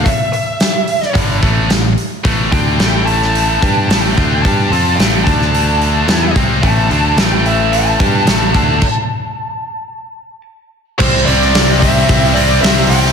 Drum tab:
CC |----------------|----------------|----------------|----------------|
HH |o-o-o-o-o-o-o-o-|o-o-o-o-o-o-o-o-|o-o-o-o-o-o-o-o-|o-o-o-o-o-o-o-o-|
SD |----o--o----o---|----o--o----o---|----o--o----o---|----o-------o---|
BD |o-------o-o-----|o-o-------o---o-|o-----o-------o-|o---------o---o-|

CC |x---------------|x---------------|
HH |----------------|--o-o-o-o-o-o-o-|
SD |----------------|---oo-------o--o|
BD |o---------------|o-----o-o-------|